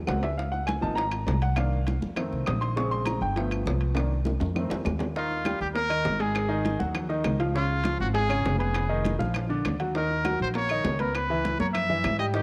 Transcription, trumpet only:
5.18 5.59 F4 medium
5.61 5.68 G4 medium
5.75 6.22 A#4 loud
6.21 6.81 G#4 medium
7.57 7.98 F4 loud
8.01 8.07 F#4 medium
8.14 8.56 G#4 loud
8.59 9.15 G#4 medium
9.97 10.38 A#4 loud
10.42 10.48 C5 loud
10.57 11.02 C#5 loud
11.01 11.17 A#4 medium
11.15 11.59 B4 loud
11.60 11.67 C#5 medium
11.74 12.16 E5 loud
12.19 12.26 D#5 medium
12.35 12.42 G4 loud

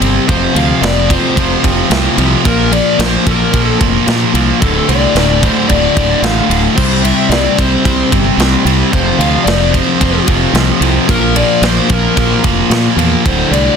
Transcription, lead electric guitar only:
0.29 0.56 C5 loud
0.55 0.82 F5 loud
0.83 1.11 D5 loud
1.10 1.60 C5 medium
2.47 2.74 A#4 loud
2.72 3.00 D5 loud
3.00 3.27 C5 loud
3.28 3.64 A#4 medium
3.64 3.77 A4 medium
4.61 4.86 A4 loud
4.88 5.44 D5 medium
5.44 5.71 C5 medium
5.69 6.22 D5 loud
6.23 6.61 F5 loud
6.76 7.05 C5 loud
7.02 7.29 E5 loud
7.30 7.58 D5 loud
7.57 8.08 C5 medium
8.93 9.21 C5 loud
9.19 9.44 F5 loud
9.44 9.73 D5 loud
9.70 10.22 C5 medium
11.09 11.36 A#4 loud
11.36 11.64 D5 loud
11.64 11.88 C5 loud
11.92 12.41 A#4 medium
13.26 13.52 C5 loud
13.52 13.76 D5 loud

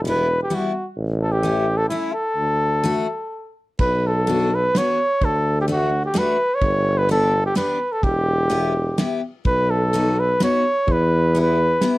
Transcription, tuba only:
0.00 0.48 E1 medium
0.97 1.88 A1 medium
2.37 2.99 D2 medium
3.79 4.72 B1 medium
5.22 6.13 D2 medium
6.62 7.54 G1 loud
8.03 8.96 E1 medium
9.45 10.38 B1 medium
10.87 11.79 E2 loud

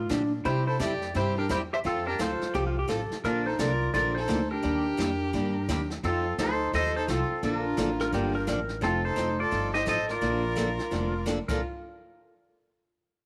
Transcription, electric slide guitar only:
0.45 0.66 E4 medium
0.45 0.66 C5 medium
0.67 0.79 E4 medium
0.67 0.81 C5 medium
0.80 1.12 G4 medium
0.80 1.13 D5 medium
1.16 1.36 E4 medium
1.16 1.38 C5 medium
1.38 1.50 D4 medium
1.38 1.51 A#4 medium
1.51 1.57 E4 medium
1.51 1.57 C5 medium
1.73 1.78 G4 medium
1.73 1.79 E5 medium
1.86 2.06 C4 medium
1.86 2.06 A4 medium
2.07 2.19 D4 medium
2.07 2.19 A#4 medium
2.21 2.53 F4 medium
2.21 2.53 C5 medium
3.25 3.45 D4 medium
3.25 3.46 A#4 medium
3.46 3.59 D#4 medium
3.46 3.58 C5 medium
3.59 3.92 F4 medium
3.59 3.93 D5 medium
3.94 4.14 F4 medium
3.94 4.16 D5 medium
4.15 4.48 D#4 medium
4.15 4.48 C5 medium
4.51 5.87 D4 medium
4.51 5.86 A#4 medium
6.05 6.37 C4 medium
6.05 6.37 A4 medium
6.39 6.71 D#4 medium
6.39 6.71 C5 medium
6.75 6.94 A4 medium
6.75 6.94 D#5 loud
6.96 7.08 D#4 medium
6.96 7.08 C5 medium
7.10 7.41 C4 medium
7.10 7.42 A4 medium
7.45 8.45 D4 medium
7.45 8.45 A#4 medium
8.84 9.03 C4 medium
8.84 9.05 A4 medium
9.05 9.37 D#4 medium
9.05 9.40 C5 medium
9.39 9.72 F4 medium
9.39 9.72 D5 loud
9.74 9.86 G4 medium
9.74 9.86 D#5 medium
9.88 10.08 A4 medium
9.88 10.08 D#5 medium
10.11 11.24 F4 medium
10.11 11.28 D5 medium
11.48 11.61 A#4 medium

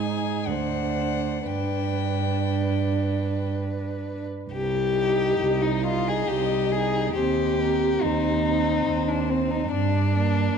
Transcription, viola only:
0.00 0.49 D#4 soft
0.47 1.46 D4 soft
1.46 4.25 D4 medium
4.96 5.83 D#4 soft
5.85 6.72 D#4 soft
6.73 7.16 D#4 soft
7.19 7.61 C4 soft
7.61 8.45 C4 soft
8.46 9.28 C4 soft
9.31 9.71 C4 soft
10.14 10.58 A#3 medium

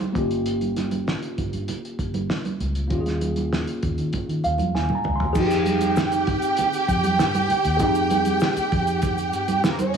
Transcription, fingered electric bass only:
0.16 1.11 G1 medium
1.38 1.52 G1 medium
1.53 1.67 G2 medium
1.99 2.26 G1 medium
2.60 2.87 C#2 medium
2.91 3.63 D#2 medium
3.83 3.96 D#2 medium
3.98 4.12 D#3 medium
4.28 4.42 D#3 medium
4.44 4.58 D#2 medium
4.59 4.73 F2 medium
4.74 4.88 D#2 medium
5.05 5.20 C#2 medium
5.20 5.34 D#2 medium
5.36 6.39 F2 loud
6.89 7.16 F2 medium
7.19 7.47 G2 medium
7.65 7.80 D#2 medium
7.80 8.34 F2 loud
8.56 muted fingered electric bass stroke soft
8.72 9.33 F2 medium
9.33 9.64 G2 loud
9.64 9.91 F2 medium

